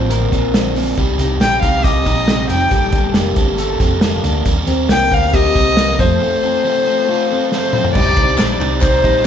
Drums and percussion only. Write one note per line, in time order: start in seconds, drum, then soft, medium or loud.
0.11 closed hi-hat medium
0.32 kick medium
0.32 closed hi-hat medium
0.54 snare loud
0.54 closed hi-hat medium
0.76 open hi-hat medium
0.97 kick medium
0.97 closed hi-hat medium
1.19 closed hi-hat medium
1.41 snare medium
1.41 closed hi-hat loud
1.63 kick medium
1.63 closed hi-hat medium
1.84 kick medium
1.84 closed hi-hat medium
2.06 kick medium
2.06 closed hi-hat medium
2.28 snare loud
2.28 closed hi-hat medium
2.49 closed hi-hat medium
2.71 kick medium
2.71 closed hi-hat medium
2.92 kick medium
2.92 closed hi-hat medium
3.14 snare loud
3.14 closed hi-hat medium
3.36 kick medium
3.36 closed hi-hat medium
3.58 closed hi-hat medium
3.80 kick medium
3.80 closed hi-hat medium
4.01 snare loud
4.01 closed hi-hat medium
4.24 closed hi-hat medium
4.46 kick loud
4.46 closed hi-hat medium
4.67 closed hi-hat medium
4.89 snare loud
4.89 closed hi-hat medium
5.12 kick medium
5.12 closed hi-hat medium
5.34 kick medium
5.34 closed hi-hat medium
5.55 kick medium
5.55 closed hi-hat medium
5.77 snare loud
5.77 closed hi-hat medium
5.99 kick loud
5.99 closed hi-hat medium
7.52 snare soft
7.73 mid tom medium
7.84 floor tom medium
7.95 kick medium
7.95 crash medium
8.17 kick medium
8.17 ride medium
8.38 snare medium
8.38 clap medium
8.38 ride medium
8.61 ride medium
8.81 kick medium
8.81 clap medium
8.81 ride medium
9.04 kick medium
9.04 ride medium